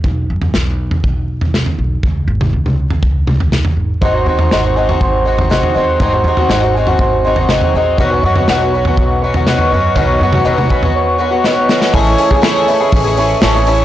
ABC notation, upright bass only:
X:1
M:4/4
L:1/8
Q:1/4=121
K:Bmix
V:1 name="Upright bass" clef=bass
B,,, F,, B,,,2 B,,,3 B,,, | C,, G,,, C,,2 C,,3 G,,, | G,,, D,, G,,,2 G,,,3 D,, | G,,, D,, G,,,2 G,,,3 ^A,,, |
B,,, F,, B,,,2 B,,,3 F,, | B,,, F,, B,,,2 z4 | A,,, z3 A,,,2 A,,,2 |]